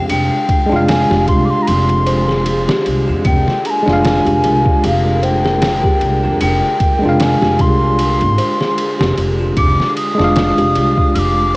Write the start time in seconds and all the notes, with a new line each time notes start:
Already playing: D3 G#3 D4 F4 F5
0.10 F1 D4 G5, ride
0.49 kick, ride
0.66 G#3 D4
0.72 F1 F4
0.76 F5
0.88 F4 G#5, snare, ride
1.10 F1 G4, snare
1.28 C2 G#4 C6, kick, ride
1.45 D6
1.50 C6
1.62 A#5
1.67 F1 C6, ride
1.89 ride
2.06 C5, ride
2.28 G#4, snare
2.46 ride
2.68 G4, snare
2.86 C2, ride
3.08 F2 F4
3.24 F1 A#3 D4 G5, kick, ride
3.48 snare
3.65 A#5, ride
3.70 G#5
3.83 G#3 D4
3.88 F1 F4, snare
3.93 F5
4.03 F4, snare, ride
4.25 F1 G4, ride
4.44 C2 G#4, ride
4.66 kick
4.84 F1 F5, ride
5.23 C5 G5, ride
5.45 G#4, snare
5.62 snare, ride
5.84 G4, kick
6.01 C2, ride
6.23 F2 F4
6.41 F1 D4 G5, ride
6.80 kick, ride
6.99 G#3 D4
7.03 F1 F4
7.09 F5
7.20 F4 G#5, snare, ride
7.41 F1 G4, snare
7.59 C2 G#4 C6, kick, ride
7.99 ride
8.21 G#1, ride
8.38 C5, ride
8.60 G#4, snare
8.78 ride
8.99 F1 G4, snare
9.17 F1, ride
9.39 F4
9.56 F1 D4 F5 D6, kick, ride
9.80 snare
9.96 D#6, ride
10.15 G#3 D4
10.19 F1 F4, snare
10.24 F5
10.36 F4, snare, ride
10.58 F1 G4, ride
10.75 C2 G#4, ride
10.97 kick
11.15 F1 D6 F6, ride